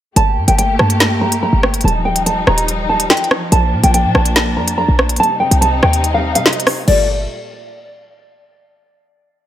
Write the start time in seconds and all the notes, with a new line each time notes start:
0.16 G1 A3 A#3 G4 A5, closed hi-hat
0.37 G2
0.48 G1 G5, closed hi-hat
0.59 G5, closed hi-hat
0.79 G2 A5, cross-stick
0.90 closed hi-hat
1.00 snare, closed hi-hat
1.21 A#5
1.32 closed hi-hat
1.43 A#5
1.53 G1
1.63 cross-stick
1.74 closed hi-hat
1.81 D#1 F3 G3 D#4, closed hi-hat
1.85 A5, closed hi-hat
2.05 G5
2.16 closed hi-hat
2.26 A5, closed hi-hat
2.47 D#1 A#5, cross-stick
2.58 closed hi-hat
2.68 closed hi-hat
2.89 A5
3.00 closed hi-hat
3.10 G5, snare, closed hi-hat
3.17 closed hi-hat
3.24 closed hi-hat
3.31 cross-stick
3.52 A#1 A#3 D4 A5, closed hi-hat
3.73 A#2
3.83 A#1 G5, closed hi-hat
3.94 G5, closed hi-hat
4.04 A#2
4.15 A#1 A5, cross-stick
4.25 closed hi-hat
4.36 snare, closed hi-hat
4.57 F2 A#5
4.68 closed hi-hat
4.78 A#5
4.88 A#1
4.99 cross-stick
5.09 closed hi-hat
5.16 C3 G3 D#4 A5, closed hi-hat
5.23 closed hi-hat
5.40 G5
5.51 C2, closed hi-hat
5.61 A5, closed hi-hat
5.83 D#2 G5, cross-stick
5.93 closed hi-hat
6.04 closed hi-hat
6.14 F5
6.35 C3 F5, closed hi-hat
6.46 D#5, snare, closed hi-hat
6.53 closed hi-hat
6.60 closed hi-hat
6.67 cross-stick, open hi-hat
6.88 G1 A#2 G3 A3 D5, crash